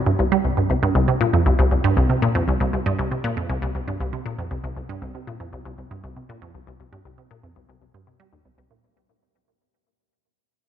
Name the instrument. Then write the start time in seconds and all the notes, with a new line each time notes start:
synth arpeggio sound
0.06 G2
0.19 C2
0.32 G3
0.45 C2
0.57 G2
0.70 C2
0.83 G2
0.95 C2
1.08 C3
1.21 A#2
1.33 F2
1.46 C2
1.59 C2
1.71 C2
1.84 G2
1.97 C2
2.10 C3
2.22 A#2
2.35 F2
2.48 C2
2.60 C2
2.73 C2
2.86 G2
2.99 C2
3.12 C3
3.24 A#2
3.37 F2
3.50 C2
3.62 C2
3.75 C2
3.88 G2
4.00 C2
4.13 C3
4.26 A#2
4.38 F2
4.51 C2
4.64 C2
4.77 C2
4.89 G2
5.02 C2
5.15 C3
5.27 A#2
5.40 F2
5.53 C2
5.65 C2
5.78 C2
5.91 G2
6.04 C2
6.16 C3
6.29 A#2
6.42 F2
6.55 C2
6.67 C2
6.80 C2
6.93 G2
7.05 C2
7.18 C3
7.31 A#2
7.43 F2
7.56 C2
7.69 C2
7.82 C2
7.94 G2
8.07 C3
8.20 G3
8.33 D#2
8.45 C2
8.58 C2
8.71 A#2